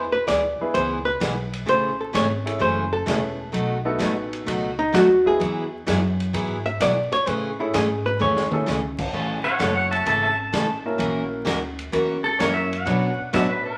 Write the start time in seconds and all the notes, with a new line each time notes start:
Already playing: E2 G#3 B3 E4 G#4 B4 C5
0.12 B4
0.27 D2 E3 B3 E4 G#4 D5, kick, snare, hi-hat pedal, ride
0.59 G#3 B3 E4 G#4 B4, muted upright bass stroke
0.74 C#2 E3 B3 E4 G#4 C5, kick, ride
1.05 B4
1.20 B1 E3 B3 E4 G#4, kick, snare, hi-hat pedal, ride
1.53 ride
1.66 A1 C#3 E3 A3 C#4 G#4 C5, kick, ride
2.01 A4
2.13 G#1 C#3 E3 A3 C#4 G#4 C#5, kick, snare, hi-hat pedal, ride
2.46 A3 C#4 E4 G#4 A4, ride
2.59 F#1 C#3 E3 A3 C#4 G#4 C5, kick
2.93 A4
3.06 E1 C#3 E3 A3 C#4 E4 G#4 B4, kick, snare, hi-hat pedal, ride
3.52 B1 B2 F#3 A3 D#4 F#4, kick, ride
3.85 A3 B3 D#4 F#4 A4
3.99 A1 B2 F#3 A3 D#4 F#4, kick, snare, hi-hat pedal, ride
4.33 ride
4.46 C#2 B2 F#3 A3 D#4 F#4, kick, ride
4.79 D#4
4.93 D#2 B2 F#3 A3 D#4 F#4, kick, snare, hi-hat pedal, ride
5.26 G#3 B3 E4 F#4 G#4
5.40 E2 E3 F#3 B3 E4 G#4, kick, ride
5.86 F#2 E3 F#3 B3 E4 G#4, kick, snare, hi-hat pedal, ride
6.20 ride
6.33 G#2 E3 F#3 B3 E4 G#4, kick, ride
6.66 E5
6.80 B2 E3 F#3 B3 E4 G#4 D5, kick, snare, hi-hat pedal, ride
7.12 C#5, muted upright bass stroke, ride
7.26 A2 C#3 E3 A3 C#4 G#4 B4, kick, ride
7.59 A3 C#4 E4 G#4 A4
7.73 G#2 C#3 E3 A3 C#4 G#4, kick, snare, hi-hat pedal, ride
8.06 B4
8.19 E2 C#3 E3 A3 C#4 G#4 C#5, mid tom
8.36 snare
8.51 A3 C#4 E4 G#4 A4, mid tom
8.66 C#2 C#3 E3 A3 C#4 G#4, snare, hi-hat pedal
8.98 kick, crash
9.13 A1 C#3 E3 A3 C#4 A4, kick
9.44 C#5 F#5
9.59 F#1 C#3 E3 A3 C#4 E4 A4 C#5 F#5, kick, snare, hi-hat pedal, ride
9.75 C#5 F#5
9.91 E5 A5, ride
10.05 G#1 C#3 E3 A3 C#4 A4 E5 A5, kick, ride
10.22 E5 A5
10.37 A5
10.53 A1 C#3 E3 A3 C#4 A4, kick, snare, hi-hat pedal, ride
10.85 A#3 C#4 E4 F#4 A#4
10.98 A#1 E3 A#3 C#4 F#4 A#4, kick, ride
11.45 D2 E3 A#3 C#4 F#4 A#4, kick, snare, hi-hat pedal, ride
11.79 ride
11.92 E2 E3 A#3 C#4 F#4 A#4, kick, ride
12.24 A4
12.39 F#2 E3 A#3 C#4 E4 F#4 A#4 C#5, kick, snare, hi-hat pedal, ride
12.54 E5
12.72 F#5, ride
12.85 B2 F#3 B3 C#4 D4 F#4 B4 C#5, kick, ride
13.20 muted upright bass stroke
13.33 A2 B2 F#3 B3 C#4 D4 F#4 C#5 D5 E5, kick, snare, hi-hat pedal, ride
13.49 B4
13.65 B4